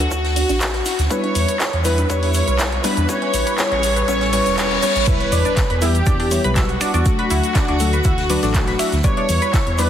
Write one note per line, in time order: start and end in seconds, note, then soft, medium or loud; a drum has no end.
0.00 1.01 F#4 loud
0.00 riser medium
0.00 cabasa soft
0.11 0.43 D2 medium
0.11 0.18 E4 medium
0.11 kick loud
0.11 closed hi-hat medium
0.11 cabasa soft
0.11 shaker medium
0.24 snare soft
0.24 closed hi-hat soft
0.36 0.46 D4 medium
0.36 open hi-hat loud
0.36 open hi-hat medium
0.36 cabasa medium
0.49 0.80 A1 medium
0.49 0.58 D4 medium
0.49 snare soft
0.49 closed hi-hat medium
0.49 cabasa soft
0.61 kick loud
0.61 snare loud
0.61 clap loud
0.61 closed hi-hat medium
0.61 cabasa soft
0.61 shaker medium
0.74 0.80 B4 medium
0.74 snare soft
0.74 closed hi-hat soft
0.85 0.93 E4 medium
0.85 snare soft
0.85 open hi-hat loud
0.85 cabasa medium
0.85 shaker medium
0.99 1.07 D2 loud
0.99 snare soft
0.99 closed hi-hat medium
0.99 cabasa soft
1.10 1.82 G3 medium
1.10 1.82 B3 medium
1.10 1.21 D4 medium
1.10 1.82 E4 medium
1.10 1.82 B4 medium
1.10 1.85 C#5 loud
1.10 1.84 C#5 loud
1.10 kick loud
1.10 closed hi-hat medium
1.10 cabasa soft
1.10 shaker medium
1.24 1.33 D4 medium
1.24 closed hi-hat soft
1.35 1.45 E2 loud
1.35 open hi-hat loud
1.35 cabasa medium
1.35 shaker medium
1.48 1.55 B4 medium
1.48 closed hi-hat soft
1.48 cabasa soft
1.60 1.67 E4 medium
1.60 kick loud
1.60 snare loud
1.60 clap loud
1.60 closed hi-hat medium
1.60 cabasa soft
1.60 shaker medium
1.73 2.04 E2 medium
1.73 closed hi-hat soft
1.84 2.00 G3 medium
1.84 2.00 B3 medium
1.84 1.95 D4 medium
1.84 2.00 E4 medium
1.84 2.08 B4 medium
1.84 2.01 B4 medium
1.84 2.08 B4 medium
1.84 open hi-hat loud
1.84 cabasa medium
1.84 shaker medium
1.98 2.07 D4 medium
1.98 closed hi-hat medium
1.98 cabasa soft
2.09 2.42 E2 medium
2.09 2.81 G3 medium
2.09 2.81 B3 medium
2.09 2.20 D4 medium
2.09 2.81 E4 medium
2.09 2.81 B4 medium
2.09 2.84 C#5 loud
2.09 kick loud
2.09 closed hi-hat medium
2.09 cabasa soft
2.09 shaker medium
2.23 2.32 D4 medium
2.23 open hi-hat medium
2.34 open hi-hat loud
2.34 cabasa medium
2.34 shaker medium
2.48 2.79 B1 medium
2.48 2.54 B4 medium
2.48 closed hi-hat medium
2.48 cabasa soft
2.59 2.66 E4 medium
2.59 kick loud
2.59 snare loud
2.59 clap loud
2.59 closed hi-hat soft
2.59 cabasa soft
2.59 shaker medium
2.72 closed hi-hat soft
2.84 3.00 G3 medium
2.84 3.00 B3 medium
2.84 2.94 D4 medium
2.84 3.00 E4 medium
2.84 3.07 B4 medium
2.84 3.00 B4 loud
2.84 3.07 B4 medium
2.84 open hi-hat loud
2.84 cabasa medium
2.84 shaker medium
2.97 3.06 E2 loud
2.97 3.06 D4 medium
2.97 closed hi-hat medium
2.97 cabasa soft
3.09 3.57 G3 medium
3.09 3.57 B3 medium
3.09 3.19 C#4 medium
3.09 3.57 E4 medium
3.09 3.57 B4 loud
3.09 3.57 C#5 loud
3.09 kick loud
3.09 closed hi-hat medium
3.09 cabasa soft
3.09 shaker medium
3.22 3.31 C#4 medium
3.22 closed hi-hat soft
3.34 3.43 A1 loud
3.34 open hi-hat loud
3.34 cabasa medium
3.34 shaker medium
3.47 3.53 B4 medium
3.47 closed hi-hat soft
3.47 cabasa soft
3.58 4.06 G3 medium
3.58 4.06 B3 medium
3.58 3.69 C#4 medium
3.58 4.06 E4 medium
3.58 4.06 B4 medium
3.58 4.06 C#5 loud
3.58 kick loud
3.58 snare loud
3.58 clap loud
3.58 closed hi-hat soft
3.58 cabasa soft
3.58 shaker medium
3.71 4.03 A1 medium
3.71 3.81 C#4 medium
3.71 clap soft
3.71 closed hi-hat soft
3.83 open hi-hat loud
3.83 cabasa medium
3.83 shaker medium
3.96 4.02 B4 medium
3.96 closed hi-hat medium
3.96 cabasa soft
4.08 4.40 A1 medium
4.08 4.31 G3 medium
4.08 4.31 B3 medium
4.08 4.18 C#4 medium
4.08 4.31 E4 medium
4.08 4.31 B4 loud
4.08 4.31 C#5 loud
4.08 kick loud
4.08 closed hi-hat medium
4.08 reverse cymbal medium
4.08 cabasa soft
4.08 shaker medium
4.21 4.30 C#4 medium
4.21 snare soft
4.21 closed hi-hat soft
4.33 4.56 G3 medium
4.33 4.56 B3 medium
4.33 4.43 C#4 medium
4.33 4.56 E4 medium
4.33 4.56 B4 loud
4.33 4.56 C#5 loud
4.33 open hi-hat loud
4.33 open hi-hat medium
4.33 cabasa medium
4.46 4.77 E1 medium
4.46 4.55 C#4 medium
4.46 snare soft
4.46 closed hi-hat medium
4.46 cabasa soft
4.58 4.81 G3 medium
4.58 4.81 B3 medium
4.58 4.68 C#4 medium
4.58 4.81 E4 medium
4.58 4.81 B4 loud
4.58 4.81 C#5 loud
4.58 kick loud
4.58 snare loud
4.58 clap loud
4.58 closed hi-hat soft
4.58 cabasa soft
4.58 shaker medium
4.71 4.80 C#4 medium
4.71 snare soft
4.71 closed hi-hat soft
4.82 5.06 G3 medium
4.82 5.06 B3 medium
4.82 4.93 C#4 medium
4.82 5.06 E4 medium
4.82 5.06 B4 loud
4.82 5.05 C#5 loud
4.82 5.06 C#5 loud
4.82 snare medium
4.82 open hi-hat loud
4.82 cabasa medium
4.82 shaker medium
4.95 5.04 A1 medium
4.95 5.05 C#4 medium
4.95 snare medium
4.95 closed hi-hat medium
4.95 cabasa soft
5.07 5.79 G3 medium
5.07 5.79 B3 medium
5.07 5.14 E4 medium
5.07 5.79 E4 medium
5.07 5.82 B4 loud
5.07 5.79 B4 loud
5.07 5.83 B4 loud
5.07 5.14 E5 medium
5.07 kick loud
5.07 closed hi-hat loud
5.07 crash loud
5.07 impact medium
5.07 cabasa soft
5.07 shaker medium
5.20 closed hi-hat soft
5.32 5.41 E2 loud
5.32 5.42 D4 medium
5.32 5.42 D5 medium
5.32 open hi-hat loud
5.32 cabasa medium
5.32 shaker medium
5.45 5.54 D4 medium
5.45 5.54 D5 medium
5.45 closed hi-hat soft
5.45 cabasa soft
5.56 kick loud
5.56 snare loud
5.56 clap loud
5.56 closed hi-hat loud
5.56 cabasa soft
5.56 shaker medium
5.70 6.01 E2 medium
5.70 5.76 B4 medium
5.70 5.76 B5 medium
5.70 closed hi-hat soft
5.81 5.97 G3 loud
5.81 5.97 B3 medium
5.81 5.89 E4 medium
5.81 5.97 E4 medium
5.81 6.47 G4 loud
5.81 5.97 B4 loud
5.81 5.89 E5 medium
5.81 open hi-hat loud
5.81 cabasa medium
5.81 shaker medium
5.95 closed hi-hat soft
5.95 cabasa soft
6.06 6.38 E2 medium
6.06 6.17 D4 medium
6.06 6.17 D5 medium
6.06 kick loud
6.06 closed hi-hat loud
6.06 cabasa soft
6.06 shaker medium
6.20 6.29 D4 medium
6.20 6.29 D5 medium
6.20 open hi-hat medium
6.31 6.42 G3 loud
6.31 6.42 B3 medium
6.31 6.42 E4 medium
6.31 6.42 C#5 loud
6.31 open hi-hat loud
6.31 cabasa medium
6.31 shaker medium
6.44 6.76 B1 medium
6.44 7.03 G3 medium
6.44 7.03 B3 medium
6.44 7.03 E4 medium
6.44 6.50 B4 medium
6.44 7.03 B4 loud
6.44 6.50 B5 medium
6.44 closed hi-hat soft
6.44 cabasa soft
6.56 6.63 E4 medium
6.56 8.95 F#4 loud
6.56 6.63 E5 medium
6.56 kick loud
6.56 snare loud
6.56 clap loud
6.56 closed hi-hat loud
6.56 cabasa soft
6.56 shaker medium
6.69 closed hi-hat soft
6.81 6.91 D4 medium
6.81 6.91 D5 medium
6.81 finger snap medium
6.81 open hi-hat loud
6.81 cabasa medium
6.81 shaker medium
6.94 7.02 E2 loud
6.94 7.03 D4 medium
6.94 7.03 D5 medium
6.94 closed hi-hat soft
6.94 cabasa soft
7.06 7.77 F#3 medium
7.06 7.77 A3 medium
7.06 7.77 D4 medium
7.06 7.77 A4 loud
7.06 kick loud
7.06 closed hi-hat loud
7.06 cabasa soft
7.06 shaker medium
7.19 7.25 B4 medium
7.19 7.25 B5 medium
7.19 closed hi-hat soft
7.30 7.40 D2 loud
7.30 7.37 E4 medium
7.30 7.37 E5 medium
7.30 open hi-hat loud
7.30 cabasa medium
7.30 shaker medium
7.44 closed hi-hat soft
7.44 cabasa soft
7.55 7.66 D4 medium
7.55 7.66 D5 medium
7.55 kick loud
7.55 snare loud
7.55 clap loud
7.55 closed hi-hat loud
7.55 cabasa soft
7.55 shaker medium
7.68 7.99 D2 medium
7.68 7.78 D4 medium
7.68 7.78 D5 medium
7.68 closed hi-hat soft
7.79 7.96 F#3 loud
7.79 7.96 A3 medium
7.79 7.96 D4 medium
7.79 7.96 A4 loud
7.79 open hi-hat loud
7.79 cabasa medium
7.79 shaker medium
7.93 7.99 B4 medium
7.93 7.99 B5 medium
7.93 closed hi-hat soft
7.93 cabasa soft
8.04 8.37 D2 medium
8.04 8.12 E4 medium
8.04 8.12 E5 medium
8.04 kick loud
8.04 closed hi-hat loud
8.04 cabasa soft
8.04 shaker medium
8.18 snare soft
8.18 closed hi-hat soft
8.30 8.41 F#3 loud
8.30 8.41 A3 medium
8.30 8.41 D4 medium
8.30 8.40 D4 medium
8.30 8.41 B4 loud
8.30 8.40 D5 medium
8.30 open hi-hat loud
8.30 open hi-hat medium
8.30 cabasa medium
8.43 8.74 A1 medium
8.43 9.01 F#3 medium
8.43 9.01 A3 medium
8.43 9.01 D4 medium
8.43 8.52 D4 medium
8.43 9.01 A4 loud
8.43 8.52 D5 medium
8.43 snare soft
8.43 closed hi-hat soft
8.43 cabasa soft
8.54 kick loud
8.54 snare loud
8.54 clap loud
8.54 closed hi-hat medium
8.54 cabasa soft
8.54 shaker medium
8.68 8.74 B4 medium
8.68 8.74 B5 medium
8.68 snare soft
8.68 closed hi-hat soft
8.79 8.86 E4 medium
8.79 8.86 E5 medium
8.79 finger snap medium
8.79 snare medium
8.79 open hi-hat loud
8.79 cabasa medium
8.79 shaker medium
8.92 9.01 D2 medium
8.92 snare medium
8.92 closed hi-hat soft
8.92 cabasa soft
9.04 9.76 G3 medium
9.04 9.76 B3 medium
9.04 9.14 D4 medium
9.04 9.76 E4 medium
9.04 9.76 B4 loud
9.04 9.80 C#5 loud
9.04 9.78 C#5 loud
9.04 9.14 D5 medium
9.04 kick loud
9.04 closed hi-hat medium
9.04 cabasa soft
9.04 shaker medium
9.17 9.26 D4 medium
9.17 9.26 D5 medium
9.17 closed hi-hat soft
9.29 9.38 E2 loud
9.29 open hi-hat loud
9.29 cabasa medium
9.29 shaker medium
9.42 9.48 B4 medium
9.42 9.48 B5 medium
9.42 closed hi-hat soft
9.42 cabasa soft
9.53 9.60 E4 medium
9.53 9.60 E5 medium
9.53 kick loud
9.53 snare loud
9.53 clap loud
9.53 closed hi-hat medium
9.53 cabasa soft
9.53 shaker medium
9.67 9.90 E2 medium
9.67 closed hi-hat soft
9.78 9.90 G3 medium
9.78 9.90 B3 medium
9.78 9.89 D4 medium
9.78 9.90 E4 medium
9.78 9.90 B4 medium
9.78 9.90 B4 loud
9.78 9.89 D5 medium
9.78 open hi-hat loud
9.78 cabasa medium
9.78 shaker medium